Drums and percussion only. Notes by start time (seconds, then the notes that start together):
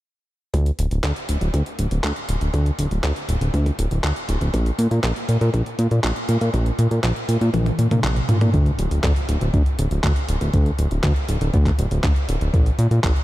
0.54 kick, closed hi-hat
0.66 closed hi-hat
0.79 closed hi-hat
0.91 closed hi-hat
1.04 kick, clap, closed hi-hat
1.16 closed hi-hat
1.29 closed hi-hat
1.41 closed hi-hat
1.54 kick, closed hi-hat
1.66 closed hi-hat
1.79 closed hi-hat
1.91 closed hi-hat
2.04 kick, clap, closed hi-hat
2.16 closed hi-hat
2.29 closed hi-hat
2.41 closed hi-hat
2.54 kick, closed hi-hat
2.66 closed hi-hat
2.79 closed hi-hat
2.91 closed hi-hat
3.04 kick, clap, closed hi-hat
3.16 closed hi-hat
3.29 closed hi-hat
3.41 closed hi-hat
3.54 kick, closed hi-hat
3.66 kick, closed hi-hat
3.79 closed hi-hat
3.91 closed hi-hat
4.04 kick, clap, closed hi-hat
4.16 closed hi-hat
4.29 closed hi-hat
4.41 closed hi-hat
4.54 kick, closed hi-hat
4.66 closed hi-hat
4.79 closed hi-hat
4.91 closed hi-hat
5.04 kick, clap, closed hi-hat
5.16 closed hi-hat
5.29 closed hi-hat
5.41 closed hi-hat
5.54 kick, closed hi-hat
5.66 closed hi-hat
5.79 closed hi-hat
5.91 closed hi-hat
6.04 kick, clap, closed hi-hat
6.16 closed hi-hat
6.29 closed hi-hat
6.41 closed hi-hat
6.54 kick, closed hi-hat
6.66 closed hi-hat
6.79 closed hi-hat
6.91 closed hi-hat
7.04 kick, clap, closed hi-hat
7.16 closed hi-hat
7.29 closed hi-hat
7.41 closed hi-hat
7.54 kick, closed hi-hat, high tom
7.66 kick, closed hi-hat, high tom
7.79 closed hi-hat
7.91 closed hi-hat, mid tom
8.04 kick, clap, closed hi-hat, mid tom
8.16 closed hi-hat
8.29 closed hi-hat, mid tom
8.41 closed hi-hat, mid tom
8.54 kick, closed hi-hat
8.66 closed hi-hat
8.79 closed hi-hat
8.91 closed hi-hat
9.04 kick, clap, closed hi-hat
9.16 closed hi-hat
9.29 closed hi-hat
9.41 closed hi-hat
9.54 kick, closed hi-hat
9.66 closed hi-hat
9.79 closed hi-hat
9.91 closed hi-hat
10.04 kick, clap, closed hi-hat
10.16 closed hi-hat
10.29 closed hi-hat
10.41 closed hi-hat
10.54 kick, closed hi-hat
10.66 closed hi-hat
10.79 closed hi-hat
10.91 closed hi-hat
11.04 kick, clap, closed hi-hat
11.16 closed hi-hat
11.29 closed hi-hat
11.41 closed hi-hat
11.54 kick, closed hi-hat
11.66 kick, clap, closed hi-hat
11.79 closed hi-hat
11.91 closed hi-hat
12.04 kick, clap, closed hi-hat
12.16 closed hi-hat
12.29 closed hi-hat
12.41 closed hi-hat
12.54 kick, closed hi-hat
12.66 closed hi-hat
12.79 closed hi-hat
12.91 closed hi-hat
13.04 kick, clap, closed hi-hat
13.16 closed hi-hat